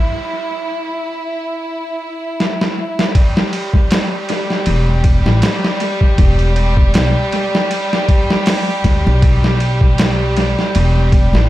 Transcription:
Already playing: E4
2.40 snare
2.61 snare
2.99 snare
3.15 G3 G4, kick, ride
3.37 snare
3.53 ride
3.74 kick
3.91 snare, ride
4.29 snare, ride
4.50 snare
4.66 E1, ride
5.04 kick, ride
5.26 A1, snare
5.42 snare, ride
5.65 snare
5.80 ride
6.01 kick
6.18 E1, kick, ride
6.39 ride
6.56 ride
6.77 kick
6.94 B1, snare, ride
7.32 ride
7.55 snare
7.71 ride
7.93 snare
8.09 kick, ride
8.30 snare
8.46 snare, open hi-hat
8.84 D2, kick, ride
9.07 B1
9.22 kick, ride
9.44 snare
9.60 ride
9.81 kick
9.98 snare, ride
10.37 snare, ride
10.59 snare
10.75 E1, ride
11.12 kick, ride
11.33 A1, snare

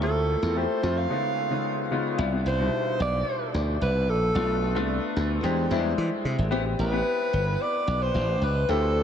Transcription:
0.01 D2 A3 C4 E4 F4 A4
0.42 E2
0.56 A3 C4 E4 G4 C5
0.82 F2 A3 C4 E4 F4
0.98 F5
1.10 C#3 G#3 B3 D#4 F4
1.50 C#3 G#3 B3 D#4 F4
1.91 C#3 G#3 B3 D#4 F4
2.18 C2 G3 B3 D4 E4
2.32 G3 B3 D4 E4
2.46 C2 C5
2.59 B2 G3 D4 D#4
2.66 E4
3.00 B1 D5
3.54 D2
3.81 C2 B4
4.08 A#1 A4
4.35 B1 A3 B3 D4 F4
4.75 C2 A3 B3 D4 F4
5.16 D2
5.43 E2 G#3 C4 D4 G4
5.70 E2 G3 C4 D4 E4
5.77 G#3
5.98 E3
6.25 C3
6.38 G#1
6.51 A1 B3 C4 E4 G4
6.65 B3 C4 E4 G4
6.79 A1 B4
6.92 B3 C4 E4 G4
7.33 G1
7.61 D5
7.87 B1
8.02 C5
8.14 A1
8.42 C#2 B4
8.68 D2 C4 E4 F4 G4 A4

